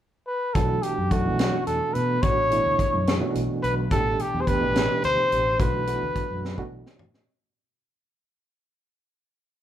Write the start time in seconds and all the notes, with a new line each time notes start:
0.27 B4
0.54 B1 B2 E3 A3 D4 F#4 A4, kick, closed hi-hat
0.83 G4, closed hi-hat
0.98 F#2
1.10 B2 E3 A3 D4 F#4 A4, kick, closed hi-hat
1.25 B1 B2 E3 A3 D4 F#4
1.39 snare, closed hi-hat
1.67 E2 A4, closed hi-hat
1.94 B2 B4, closed hi-hat
2.22 A1 B2 E3 A3 D4 F#4 C#5, kick, closed hi-hat
2.50 B2 E3 A3 D4 E4, closed hi-hat
2.66 D2
2.79 kick, closed hi-hat
2.94 F#2
3.07 snare, closed hi-hat
3.19 B2 E3 A3 D4 F#4
3.35 B1, closed hi-hat
3.63 B1 B4, closed hi-hat
3.90 A1 B2 E3 A3 D4 G4 A4, kick, closed hi-hat
4.19 G4, closed hi-hat
4.34 E2
4.41 C5
4.46 B2 E3 A3 D4 G4 B4, kick, closed hi-hat
4.60 A1 B2 E3 A3 D4 G4
4.75 snare, closed hi-hat
5.04 D2 C5, closed hi-hat
5.32 A1, closed hi-hat
5.59 B1 B2 E3 A3 D4 F#4 B4, kick, closed hi-hat
5.87 B2 E3 A3 D4 F#4, closed hi-hat
6.03 D2
6.16 muted fretless electric bass stroke, kick, closed hi-hat
6.31 F#2
6.45 snare
6.57 B2 E3 A3 D4 F#4, kick
6.72 B1
6.87 snare
6.99 A2, floor tom
7.14 snare